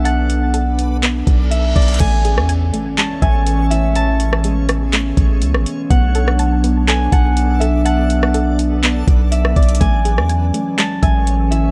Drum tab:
CC |--------------------------------|x-------------------------------|--------------------------------|--------------------------------|
HH |x---x---x---x---x---x---x---xxxx|x---x---x---x---x---x---x---x---|x---x---x---x---x---x---x---x---|x---x---x---x---x---x---x---x---|
CP |----------------x---------------|----------------x---------------|----------------x---------------|----------------x---------------|
SD |--------------------------------|------r-------------------------|------r-----r-------------r-----|------r-------------------------|
BD |--------------------o-------o---|o-------------------o-----------|--------------------o-----------|o-------------------o-----------|

CC |--------------------------------|--------------------------------|
HH |x---x---x---x---x---x---x---xxxx|x---x---x---x---x---x---x---x---|
CP |----------------x---------------|----------------x---------------|
SD |------r-------------------r-----|------r-------------------------|
BD |--------------------o-------o---|o-------------------o-----------|